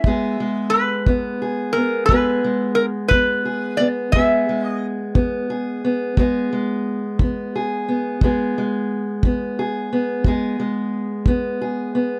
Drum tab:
BD |o--o--o--o--|o--o--o--o--|o--o--o--o--|